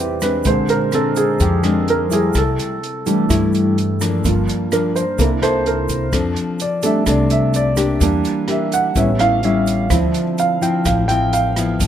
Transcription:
Already playing: upright bass E2, grand piano C3 G3 E4 C5 D5, nylon-string guitar E3 C4 G4 B4
0.00 grand piano G4
0.21 nylon-string guitar G#3 C4 D4, grand piano B4, cross-stick, closed hi-hat, shaker
0.44 upright bass A#1, nylon-string guitar A#2, grand piano D3 G#3 C4 C5, kick, closed hi-hat, shaker
0.68 grand piano A#4, closed hi-hat, shaker
0.92 nylon-string guitar G#3 C4 D4, grand piano A4, cross-stick, closed hi-hat, shaker
1.16 grand piano G#4, closed hi-hat, shaker
1.40 upright bass F2, nylon-string guitar F3, grand piano G4, kick, closed hi-hat, shaker
1.63 nylon-string guitar G#3 C4 D4, cross-stick, closed hi-hat, shaker
1.88 grand piano A#4, closed hi-hat
2.10 nylon-string guitar G3 A3 E4, grand piano G#4, closed hi-hat, shaker
2.33 upright bass C2, nylon-string guitar C3, kick, cross-stick, closed hi-hat, shaker
2.38 grand piano A4
2.59 closed hi-hat, shaker
2.83 closed hi-hat
3.06 grand piano E3 A3 D4, nylon-string guitar G3 A3 E4, closed hi-hat, shaker
3.29 nylon-string guitar G2 G3 A3 E4, upright bass G2, kick, cross-stick, closed hi-hat, shaker
3.53 closed hi-hat, shaker
3.78 closed hi-hat
4.01 nylon-string guitar F3 A#3 D4, cross-stick, closed hi-hat, shaker
4.25 upright bass G1, nylon-string guitar G2, grand piano A#3 F4, kick, closed hi-hat, shaker
4.48 closed hi-hat, shaker
4.72 nylon-string guitar F3 A#3 D4, grand piano A#4, cross-stick, closed hi-hat, shaker
4.96 grand piano C5, closed hi-hat, shaker
5.18 upright bass C2, nylon-string guitar C3 A#3 E4 A4, grand piano A#3 D4 E4 A#4, kick, closed hi-hat, shaker
5.42 nylon-string guitar A#3 E4 A4, grand piano C5, cross-stick, closed hi-hat, shaker
5.66 grand piano A#4, closed hi-hat
5.89 kick, closed hi-hat, shaker
6.12 upright bass F2, nylon-string guitar F3 C4 D4 A4, kick, cross-stick, closed hi-hat, shaker
6.36 closed hi-hat, shaker
6.59 grand piano D5, closed hi-hat, shaker
6.82 grand piano G3 A3 D4 E5, nylon-string guitar C4 D4 A4, closed hi-hat, shaker
7.06 upright bass C2, nylon-string guitar C3 C4 D4 A4, grand piano D5, kick, cross-stick, closed hi-hat, shaker
7.30 grand piano E5, closed hi-hat, shaker
7.54 grand piano D5, closed hi-hat, shaker
7.76 nylon-string guitar A#3 D4 G4, cross-stick, closed hi-hat, shaker
8.00 upright bass E2, nylon-string guitar E3, grand piano G3 A#3 D4, kick, closed hi-hat, shaker
8.25 closed hi-hat, shaker
8.48 nylon-string guitar A#3 D4 G4, grand piano E5, cross-stick, closed hi-hat
8.72 grand piano F#5, closed hi-hat, shaker
8.95 upright bass A1, nylon-string guitar A2 G3 C#4 E4, grand piano G3 B3 C#4 E5, kick, closed hi-hat, shaker
9.19 nylon-string guitar G3 C#4 E4, grand piano F5, cross-stick, closed hi-hat, shaker
9.43 nylon-string guitar G3 C#4 E4, grand piano E5, closed hi-hat
9.67 closed hi-hat, shaker
9.90 upright bass D2, nylon-string guitar D3 F3 C4 E4, grand piano F3 C4 E4, kick, cross-stick, closed hi-hat, shaker
10.14 closed hi-hat, shaker
10.38 grand piano F5, closed hi-hat, shaker
10.61 nylon-string guitar F3 C4 E4, grand piano G5, closed hi-hat, shaker
10.85 upright bass A1, nylon-string guitar A2, grand piano F5, kick, cross-stick, closed hi-hat, shaker
11.08 nylon-string guitar F3 C4 E4, grand piano G5, closed hi-hat, shaker
11.33 grand piano F5, closed hi-hat, shaker
11.56 nylon-string guitar F3 B3 E4, cross-stick, closed hi-hat, shaker
11.79 upright bass G1, nylon-string guitar G2, kick, closed hi-hat, shaker

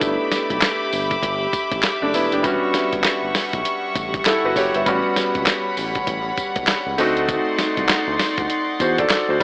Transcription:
Already playing: grand piano A3 B3 D4 E4, string section G4 E5 B5 D6
0.01 analog synth bass G1, kick, closed hi-hat, tambourine
0.32 snare, closed hi-hat, tambourine
0.50 analog synth bass B1, kick, closed hi-hat
0.62 snare, clap, closed hi-hat, tambourine
0.93 analog synth bass G1, open hi-hat, tambourine
1.11 kick, closed hi-hat
1.23 analog synth bass G1, kick, closed hi-hat
1.53 kick, closed hi-hat, tambourine
1.71 analog synth bass A1, kick, closed hi-hat
1.83 snare, clap, closed hi-hat, tambourine
2.02 analog synth bass F#1, grand piano A3 D4
2.14 analog synth bass E1, grand piano B3 E4, open hi-hat, tambourine
2.32 analog synth bass F#1, grand piano D4 G4, closed hi-hat
2.43 analog synth bass E1, grand piano G3 B3 C#4 F#4, string section G3 F#5 C#6, kick, closed hi-hat, tambourine
2.74 snare, closed hi-hat, tambourine
2.93 analog synth bass G1, kick, closed hi-hat
3.04 snare, clap, closed hi-hat, tambourine
3.23 analog synth bass G1
3.35 snare, open hi-hat, tambourine
3.53 analog synth bass B1, kick, closed hi-hat
3.65 closed hi-hat
3.95 analog synth bass A1, kick, closed hi-hat, tambourine
4.14 kick, closed hi-hat
4.25 grand piano E4 A4, snare, clap, closed hi-hat, tambourine
4.44 analog synth bass G1, grand piano F#4 B4
4.56 analog synth bass F#1, grand piano G4 C#5, kick, open hi-hat, tambourine
4.74 analog synth bass G1, grand piano B4 E5, closed hi-hat
4.86 analog synth bass A1, grand piano G3 B3 C#4 F#4, string section C#5 B5, kick, closed hi-hat, tambourine
5.16 snare, closed hi-hat, tambourine
5.35 analog synth bass C#2, kick, closed hi-hat
5.46 snare, clap, closed hi-hat, tambourine
5.77 analog synth bass A1, open hi-hat, tambourine
5.95 kick, closed hi-hat
6.07 analog synth bass A1, kick, closed hi-hat
6.37 kick, closed hi-hat, tambourine
6.56 analog synth bass B1, kick, closed hi-hat
6.67 analog synth bass C#2, snare, clap, closed hi-hat, tambourine
6.87 analog synth bass C#2
6.98 analog synth bass D2, grand piano A3 C4 D#4 F#4, string section D#4 D5 C6, open hi-hat, tambourine
7.17 closed hi-hat
7.29 kick, closed hi-hat, tambourine
7.59 snare, closed hi-hat, tambourine
7.77 analog synth bass C2, kick, closed hi-hat
7.89 snare, clap, closed hi-hat, tambourine
8.08 analog synth bass D2
8.19 snare, open hi-hat, tambourine
8.38 analog synth bass D2, kick, closed hi-hat
8.50 closed hi-hat
8.80 analog synth bass E2, grand piano F#4 C5, kick, closed hi-hat, tambourine
8.98 grand piano A4 D5, kick, closed hi-hat
9.10 snare, clap, closed hi-hat, tambourine
9.29 analog synth bass D2, grand piano F#4 C5
9.40 grand piano G3

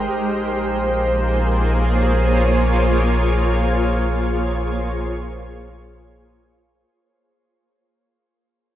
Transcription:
Already playing: ambient pad G#3 D#4 G4 A#4 C5
0.12 sub bass A#1, ambient pad A#3
0.27 ambient pad G#4
0.32 ambient pad F4
1.13 ambient pad C#5

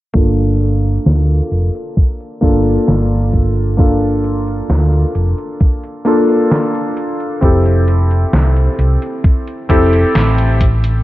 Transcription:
0.14 fingered electric bass G1, electric grand piano A#3 D4 F4 A4, kick
0.38 closed hi-hat
0.61 closed hi-hat
0.84 closed hi-hat
1.06 fingered electric bass D2, snare, closed hi-hat
1.29 closed hi-hat
1.51 fingered electric bass F1, closed hi-hat
1.75 closed hi-hat
1.97 kick, closed hi-hat
2.20 closed hi-hat
2.41 fingered electric bass G1, electric grand piano A#3 D4 F4 A4, kick, closed hi-hat
2.66 closed hi-hat
2.88 fingered electric bass G1, snare, closed hi-hat
3.11 closed hi-hat
3.33 kick, closed hi-hat
3.57 closed hi-hat
3.77 electric grand piano A#3 D4 F4 A4, kick, closed hi-hat
4.02 closed hi-hat
4.24 closed hi-hat
4.47 closed hi-hat
4.70 fingered electric bass D2, snare, closed hi-hat
4.93 closed hi-hat
5.15 fingered electric bass F1, closed hi-hat
5.38 closed hi-hat
5.60 kick, closed hi-hat
5.83 closed hi-hat
6.05 electric grand piano A#3 D4 F4 A4, closed hi-hat
6.29 closed hi-hat
6.51 snare, closed hi-hat
6.75 closed hi-hat
6.97 closed hi-hat
7.20 closed hi-hat
7.41 fingered electric bass F1, electric grand piano C4 E4 G4 A4, kick, closed hi-hat
7.66 closed hi-hat
7.88 closed hi-hat
8.11 closed hi-hat
8.33 fingered electric bass C2, snare, closed hi-hat
8.57 closed hi-hat
8.79 fingered electric bass C2, closed hi-hat
9.02 closed hi-hat
9.24 kick, closed hi-hat
9.48 closed hi-hat
9.69 fingered electric bass F1, electric grand piano C4 E4 G4 A4, kick, closed hi-hat
9.93 closed hi-hat
10.15 fingered electric bass A1, snare, closed hi-hat
10.38 closed hi-hat
10.61 kick, closed hi-hat
10.84 closed hi-hat

